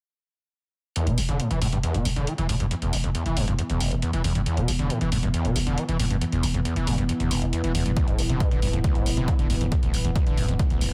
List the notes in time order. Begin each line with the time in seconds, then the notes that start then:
0.96 E2 E3 B3, closed hi-hat
1.07 E1 B2, closed hi-hat
1.18 E1, open hi-hat
1.29 E1 D3, closed hi-hat
1.40 A2, closed hi-hat
1.51 E1 E3, closed hi-hat
1.62 E1 A2, open hi-hat
1.73 E1 G2, closed hi-hat
1.83 E2, closed hi-hat
1.94 E1 B2, closed hi-hat
2.05 E1, open hi-hat
2.16 E1 D3, closed hi-hat
2.27 E3, closed hi-hat
2.38 E1 E3, closed hi-hat
2.49 E1 A2, open hi-hat
2.60 E1 G2, closed hi-hat
2.71 E2, closed hi-hat
2.82 E1 E2, closed hi-hat
2.93 E1, open hi-hat
3.04 E1 F2, closed hi-hat
3.15 E2, closed hi-hat
3.26 E1 E3, closed hi-hat
3.37 E1 G2, open hi-hat
3.48 E1 G2, closed hi-hat
3.59 E2, closed hi-hat
3.70 E1 E2, closed hi-hat
3.80 E1, open hi-hat
3.91 E1 E2, closed hi-hat
4.02 E2, closed hi-hat
4.13 E1 E3, closed hi-hat
4.24 E1 E2, open hi-hat
4.35 E1 G2, closed hi-hat
4.46 E2, closed hi-hat
4.57 E1 B2, closed hi-hat
4.68 E1, open hi-hat
4.79 E1 D3, closed hi-hat
4.90 A2, closed hi-hat
5.01 E1 E3, closed hi-hat
5.12 E1 A2, open hi-hat
5.23 E1 G2, closed hi-hat
5.34 E2, closed hi-hat
5.45 E1 B2, closed hi-hat
5.56 E1, open hi-hat
5.67 E1 D3, closed hi-hat
5.78 E3, closed hi-hat
5.89 E1 E3, closed hi-hat
5.99 E1 A2, open hi-hat
6.11 E1 G2, closed hi-hat
6.21 E2, closed hi-hat
6.32 E1 E2, closed hi-hat
6.43 E1, open hi-hat
6.54 E1 F2, closed hi-hat
6.65 E2, closed hi-hat
6.76 E1 E3, closed hi-hat
6.87 E1 G2, open hi-hat
6.98 E1 G2, closed hi-hat
7.09 E2, closed hi-hat
7.20 E1 E2, closed hi-hat
7.31 E1, open hi-hat
7.42 E1 E2, closed hi-hat
7.53 E2, closed hi-hat
7.64 E1 E3, closed hi-hat
7.75 E1 E2, open hi-hat
7.86 E1 G2, closed hi-hat
7.97 D2, kick, closed hi-hat
8.08 D1 A2, closed hi-hat
8.18 D1, open hi-hat
8.29 D1 C3, closed hi-hat
8.40 G2, kick, closed hi-hat
8.51 D1 D3, closed hi-hat
8.62 D1 G2, open hi-hat
8.73 D1 F2, closed hi-hat
8.84 D2, kick, closed hi-hat
8.95 D1 A2, closed hi-hat
9.06 D1, open hi-hat
9.17 D1 C3, closed hi-hat
9.28 D3, kick, closed hi-hat
9.39 D1 D3, closed hi-hat
9.50 D1 G2, open hi-hat
9.61 D1 F2, closed hi-hat
9.72 D2, kick, closed hi-hat
9.83 D1 D2, closed hi-hat
9.94 D1, open hi-hat
10.05 D1 E2, closed hi-hat
10.16 D2, kick, closed hi-hat
10.27 D1 D3, closed hi-hat
10.37 D1 F2, open hi-hat
10.48 D1 F2, closed hi-hat
10.59 D2, kick, closed hi-hat
10.70 D1 D2, closed hi-hat
10.81 D1, open hi-hat